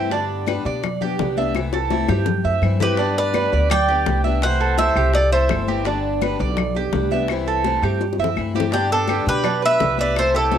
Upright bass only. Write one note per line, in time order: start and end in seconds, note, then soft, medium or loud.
0.00 0.59 G2 medium
0.65 1.15 B2 medium
1.19 2.03 C2 medium
2.09 2.42 G2 medium
2.44 2.61 F#2 medium
2.62 3.46 G2 medium
3.53 4.03 D2 medium
4.06 4.90 C2 medium
4.95 5.46 C2 loud
5.50 6.34 G1 loud
6.40 6.90 B1 loud
6.93 7.77 C2 medium
7.82 8.16 G2 medium
8.18 8.35 F#2 medium
8.37 9.21 G2 medium
9.27 9.77 B2 loud
9.81 10.58 C2 medium